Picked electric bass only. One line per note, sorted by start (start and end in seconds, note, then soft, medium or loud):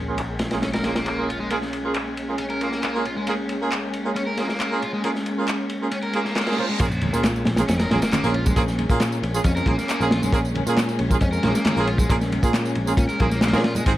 0.00 6.78 A#1 medium
6.80 7.08 A#1 medium
7.13 7.48 A#2 medium
7.46 7.62 A#1 medium
7.69 7.85 F2 loud
7.91 7.99 A#1 medium
8.24 8.52 A#1 medium
8.56 8.85 A#1 loud
8.90 9.24 A#2 medium
9.23 9.39 A#1 medium
9.45 9.61 F2 medium
9.66 9.75 A#1 medium
10.00 10.28 A#1 medium
10.32 10.61 A#1 loud
10.67 11.01 A#2 medium
11.00 11.16 A#1 medium
11.21 11.37 F2 loud
11.44 11.52 A#1 medium
11.77 12.05 A#1 medium
12.09 12.38 A#1 loud
12.43 12.78 A#2 medium
12.76 12.92 A#1 medium
12.97 13.06 A#2 loud
13.20 13.55 A#1 medium
13.53 13.81 A#2 medium
13.86 13.98 G#1 loud